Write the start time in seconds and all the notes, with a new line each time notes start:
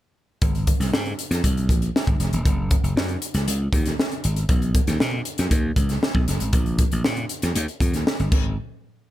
0.42 G#1, kick, closed hi-hat
0.55 closed hi-hat
0.67 kick, closed hi-hat
0.80 C2, snare, closed hi-hat
0.93 G#2, snare
1.05 closed hi-hat
1.19 closed hi-hat
1.31 F2, snare, closed hi-hat
1.44 C2, kick, closed hi-hat
1.57 closed hi-hat
1.69 A#1, kick, closed hi-hat
1.82 closed hi-hat
1.96 snare
2.07 G#1, kick, closed hi-hat
2.20 F1, snare, closed hi-hat
2.33 D#1, closed hi-hat
2.45 F#1, kick, closed hi-hat
2.71 kick, closed hi-hat
2.83 F#1, closed hi-hat
2.96 F#2, snare
3.09 closed hi-hat
3.22 closed hi-hat
3.34 C#2, snare, closed hi-hat
3.48 C#2, closed hi-hat
3.73 D#2, kick, closed hi-hat
3.86 snare, closed hi-hat
4.00 snare
4.12 closed hi-hat
4.24 G#1, closed hi-hat
4.36 closed hi-hat
4.49 B1, kick, closed hi-hat
4.62 closed hi-hat
4.75 kick, closed hi-hat
4.87 D#2, snare, closed hi-hat
5.00 B2, snare
5.25 closed hi-hat
5.38 F#2, snare, closed hi-hat
5.51 D#2, kick, closed hi-hat
5.76 C#2, kick, closed hi-hat
5.89 snare, closed hi-hat
6.03 snare
6.15 B1, kick
6.28 F#1, snare, closed hi-hat
6.40 G#1, closed hi-hat
6.53 A#1, kick, closed hi-hat
6.66 closed hi-hat
6.79 kick, closed hi-hat
6.92 A#1, closed hi-hat
7.04 A#2, snare
7.17 closed hi-hat
7.29 closed hi-hat
7.42 F2, snare, closed hi-hat
7.55 D#2, closed hi-hat
7.68 closed hi-hat
7.80 F2, kick, closed hi-hat
7.94 D#2, snare, closed hi-hat
8.07 snare
8.20 G1, closed hi-hat
8.32 G#1, kick, crash